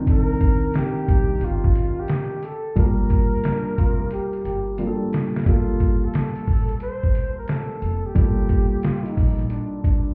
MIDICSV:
0, 0, Header, 1, 6, 480
1, 0, Start_track
1, 0, Key_signature, -2, "minor"
1, 0, Tempo, 674157
1, 50, Time_signature, 4, 2, 24, 8
1, 7220, End_track
2, 0, Start_track
2, 0, Title_t, "Flugelhorn"
2, 0, Program_c, 0, 56
2, 73, Note_on_c, 0, 70, 123
2, 544, Note_on_c, 0, 67, 111
2, 555, Note_off_c, 0, 70, 0
2, 1028, Note_on_c, 0, 65, 105
2, 1039, Note_off_c, 0, 67, 0
2, 1421, Note_on_c, 0, 67, 97
2, 1432, Note_off_c, 0, 65, 0
2, 1741, Note_on_c, 0, 69, 98
2, 1752, Note_off_c, 0, 67, 0
2, 1975, Note_off_c, 0, 69, 0
2, 1981, Note_on_c, 0, 70, 113
2, 3387, Note_off_c, 0, 70, 0
2, 3909, Note_on_c, 0, 65, 98
2, 4308, Note_on_c, 0, 69, 99
2, 4319, Note_off_c, 0, 65, 0
2, 4857, Note_off_c, 0, 69, 0
2, 4861, Note_on_c, 0, 72, 114
2, 5226, Note_off_c, 0, 72, 0
2, 5256, Note_on_c, 0, 70, 81
2, 5342, Note_on_c, 0, 69, 91
2, 5353, Note_off_c, 0, 70, 0
2, 5740, Note_on_c, 0, 67, 87
2, 5751, Note_off_c, 0, 69, 0
2, 6694, Note_off_c, 0, 67, 0
2, 7220, End_track
3, 0, Start_track
3, 0, Title_t, "Trombone"
3, 0, Program_c, 1, 57
3, 2451, Note_on_c, 1, 62, 83
3, 2673, Note_off_c, 1, 62, 0
3, 2695, Note_on_c, 1, 65, 98
3, 2802, Note_off_c, 1, 65, 0
3, 2938, Note_on_c, 1, 67, 105
3, 3157, Note_off_c, 1, 67, 0
3, 3173, Note_on_c, 1, 67, 98
3, 3411, Note_on_c, 1, 62, 83
3, 3422, Note_off_c, 1, 67, 0
3, 3891, Note_off_c, 1, 62, 0
3, 6288, Note_on_c, 1, 65, 100
3, 6447, Note_on_c, 1, 63, 93
3, 6457, Note_off_c, 1, 65, 0
3, 6762, Note_off_c, 1, 63, 0
3, 6767, Note_on_c, 1, 62, 89
3, 6991, Note_off_c, 1, 62, 0
3, 7010, Note_on_c, 1, 62, 84
3, 7220, Note_off_c, 1, 62, 0
3, 7220, End_track
4, 0, Start_track
4, 0, Title_t, "Grand piano"
4, 0, Program_c, 2, 0
4, 0, Note_on_c, 2, 51, 76
4, 0, Note_on_c, 2, 60, 70
4, 0, Note_on_c, 2, 62, 75
4, 0, Note_on_c, 2, 70, 90
4, 1699, Note_off_c, 2, 60, 0
4, 1703, Note_off_c, 2, 62, 0
4, 1707, Note_off_c, 2, 70, 0
4, 1719, Note_off_c, 2, 51, 0
4, 1962, Note_on_c, 2, 55, 68
4, 1966, Note_on_c, 2, 58, 60
4, 1974, Note_on_c, 2, 65, 63
4, 1984, Note_on_c, 2, 67, 55
4, 2029, Note_on_c, 2, 70, 72
4, 2038, Note_off_c, 2, 67, 0
4, 3377, Note_off_c, 2, 55, 0
4, 3379, Note_off_c, 2, 58, 0
4, 3383, Note_off_c, 2, 65, 0
4, 3408, Note_on_c, 2, 55, 57
4, 3411, Note_off_c, 2, 70, 0
4, 3411, Note_on_c, 2, 58, 54
4, 3414, Note_on_c, 2, 65, 54
4, 3417, Note_on_c, 2, 67, 55
4, 3467, Note_on_c, 2, 69, 68
4, 3474, Note_off_c, 2, 67, 0
4, 3870, Note_off_c, 2, 55, 0
4, 3878, Note_off_c, 2, 58, 0
4, 3881, Note_on_c, 2, 55, 57
4, 3885, Note_off_c, 2, 65, 0
4, 3889, Note_on_c, 2, 58, 56
4, 3892, Note_off_c, 2, 69, 0
4, 3896, Note_on_c, 2, 65, 53
4, 3903, Note_on_c, 2, 69, 66
4, 5777, Note_off_c, 2, 55, 0
4, 5781, Note_off_c, 2, 58, 0
4, 5784, Note_off_c, 2, 65, 0
4, 5788, Note_off_c, 2, 69, 0
4, 5801, Note_on_c, 2, 55, 65
4, 5809, Note_on_c, 2, 57, 44
4, 5816, Note_on_c, 2, 65, 56
4, 5823, Note_on_c, 2, 69, 63
4, 5853, Note_on_c, 2, 58, 53
4, 5870, Note_off_c, 2, 57, 0
4, 7220, Note_off_c, 2, 55, 0
4, 7220, Note_off_c, 2, 58, 0
4, 7220, Note_off_c, 2, 65, 0
4, 7220, Note_off_c, 2, 69, 0
4, 7220, End_track
5, 0, Start_track
5, 0, Title_t, "Upright bass"
5, 0, Program_c, 3, 32
5, 0, Note_on_c, 3, 36, 92
5, 316, Note_off_c, 3, 36, 0
5, 771, Note_on_c, 3, 36, 93
5, 961, Note_off_c, 3, 36, 0
5, 1008, Note_on_c, 3, 31, 87
5, 1199, Note_off_c, 3, 31, 0
5, 1969, Note_on_c, 3, 31, 109
5, 2286, Note_off_c, 3, 31, 0
5, 2693, Note_on_c, 3, 29, 99
5, 2882, Note_off_c, 3, 29, 0
5, 3167, Note_on_c, 3, 31, 79
5, 3484, Note_off_c, 3, 31, 0
5, 3889, Note_on_c, 3, 31, 98
5, 4271, Note_off_c, 3, 31, 0
5, 4611, Note_on_c, 3, 33, 77
5, 4801, Note_off_c, 3, 33, 0
5, 5568, Note_on_c, 3, 29, 81
5, 5694, Note_off_c, 3, 29, 0
5, 5808, Note_on_c, 3, 31, 105
5, 6190, Note_off_c, 3, 31, 0
5, 6531, Note_on_c, 3, 34, 89
5, 6721, Note_off_c, 3, 34, 0
5, 7220, End_track
6, 0, Start_track
6, 0, Title_t, "Drums"
6, 49, Note_on_c, 9, 36, 104
6, 51, Note_on_c, 9, 42, 80
6, 121, Note_off_c, 9, 36, 0
6, 122, Note_off_c, 9, 42, 0
6, 290, Note_on_c, 9, 42, 68
6, 291, Note_on_c, 9, 36, 83
6, 361, Note_off_c, 9, 42, 0
6, 362, Note_off_c, 9, 36, 0
6, 527, Note_on_c, 9, 42, 92
6, 537, Note_on_c, 9, 38, 108
6, 598, Note_off_c, 9, 42, 0
6, 609, Note_off_c, 9, 38, 0
6, 772, Note_on_c, 9, 36, 92
6, 772, Note_on_c, 9, 42, 74
6, 843, Note_off_c, 9, 36, 0
6, 843, Note_off_c, 9, 42, 0
6, 1004, Note_on_c, 9, 42, 87
6, 1075, Note_off_c, 9, 42, 0
6, 1169, Note_on_c, 9, 36, 90
6, 1240, Note_off_c, 9, 36, 0
6, 1249, Note_on_c, 9, 42, 70
6, 1320, Note_off_c, 9, 42, 0
6, 1481, Note_on_c, 9, 42, 84
6, 1492, Note_on_c, 9, 38, 102
6, 1552, Note_off_c, 9, 42, 0
6, 1563, Note_off_c, 9, 38, 0
6, 1727, Note_on_c, 9, 42, 69
6, 1799, Note_off_c, 9, 42, 0
6, 1967, Note_on_c, 9, 42, 77
6, 1968, Note_on_c, 9, 36, 106
6, 2038, Note_off_c, 9, 42, 0
6, 2039, Note_off_c, 9, 36, 0
6, 2207, Note_on_c, 9, 42, 65
6, 2211, Note_on_c, 9, 36, 93
6, 2278, Note_off_c, 9, 42, 0
6, 2282, Note_off_c, 9, 36, 0
6, 2447, Note_on_c, 9, 42, 89
6, 2457, Note_on_c, 9, 38, 105
6, 2518, Note_off_c, 9, 42, 0
6, 2528, Note_off_c, 9, 38, 0
6, 2692, Note_on_c, 9, 42, 81
6, 2693, Note_on_c, 9, 36, 93
6, 2763, Note_off_c, 9, 42, 0
6, 2764, Note_off_c, 9, 36, 0
6, 2924, Note_on_c, 9, 42, 90
6, 2995, Note_off_c, 9, 42, 0
6, 3084, Note_on_c, 9, 42, 42
6, 3155, Note_off_c, 9, 42, 0
6, 3171, Note_on_c, 9, 42, 68
6, 3242, Note_off_c, 9, 42, 0
6, 3403, Note_on_c, 9, 42, 84
6, 3474, Note_off_c, 9, 42, 0
6, 3652, Note_on_c, 9, 42, 66
6, 3661, Note_on_c, 9, 38, 95
6, 3723, Note_off_c, 9, 42, 0
6, 3732, Note_off_c, 9, 38, 0
6, 3819, Note_on_c, 9, 38, 94
6, 3889, Note_on_c, 9, 42, 76
6, 3890, Note_off_c, 9, 38, 0
6, 3890, Note_on_c, 9, 36, 111
6, 3961, Note_off_c, 9, 36, 0
6, 3961, Note_off_c, 9, 42, 0
6, 4129, Note_on_c, 9, 42, 60
6, 4131, Note_on_c, 9, 36, 89
6, 4201, Note_off_c, 9, 42, 0
6, 4203, Note_off_c, 9, 36, 0
6, 4369, Note_on_c, 9, 42, 82
6, 4380, Note_on_c, 9, 38, 110
6, 4441, Note_off_c, 9, 42, 0
6, 4451, Note_off_c, 9, 38, 0
6, 4526, Note_on_c, 9, 42, 47
6, 4597, Note_off_c, 9, 42, 0
6, 4609, Note_on_c, 9, 46, 51
6, 4610, Note_on_c, 9, 36, 91
6, 4680, Note_off_c, 9, 46, 0
6, 4682, Note_off_c, 9, 36, 0
6, 4763, Note_on_c, 9, 42, 48
6, 4834, Note_off_c, 9, 42, 0
6, 4843, Note_on_c, 9, 42, 86
6, 4914, Note_off_c, 9, 42, 0
6, 5008, Note_on_c, 9, 36, 75
6, 5079, Note_off_c, 9, 36, 0
6, 5090, Note_on_c, 9, 42, 66
6, 5161, Note_off_c, 9, 42, 0
6, 5323, Note_on_c, 9, 42, 80
6, 5334, Note_on_c, 9, 38, 102
6, 5394, Note_off_c, 9, 42, 0
6, 5406, Note_off_c, 9, 38, 0
6, 5568, Note_on_c, 9, 42, 66
6, 5639, Note_off_c, 9, 42, 0
6, 5807, Note_on_c, 9, 36, 109
6, 5807, Note_on_c, 9, 42, 83
6, 5878, Note_off_c, 9, 36, 0
6, 5878, Note_off_c, 9, 42, 0
6, 6045, Note_on_c, 9, 42, 65
6, 6050, Note_on_c, 9, 36, 89
6, 6116, Note_off_c, 9, 42, 0
6, 6121, Note_off_c, 9, 36, 0
6, 6288, Note_on_c, 9, 42, 86
6, 6298, Note_on_c, 9, 38, 105
6, 6359, Note_off_c, 9, 42, 0
6, 6369, Note_off_c, 9, 38, 0
6, 6448, Note_on_c, 9, 42, 53
6, 6520, Note_off_c, 9, 42, 0
6, 6532, Note_on_c, 9, 36, 89
6, 6534, Note_on_c, 9, 46, 52
6, 6603, Note_off_c, 9, 36, 0
6, 6605, Note_off_c, 9, 46, 0
6, 6686, Note_on_c, 9, 42, 44
6, 6757, Note_off_c, 9, 42, 0
6, 6763, Note_on_c, 9, 42, 90
6, 6834, Note_off_c, 9, 42, 0
6, 7007, Note_on_c, 9, 36, 87
6, 7011, Note_on_c, 9, 42, 65
6, 7078, Note_off_c, 9, 36, 0
6, 7082, Note_off_c, 9, 42, 0
6, 7220, End_track
0, 0, End_of_file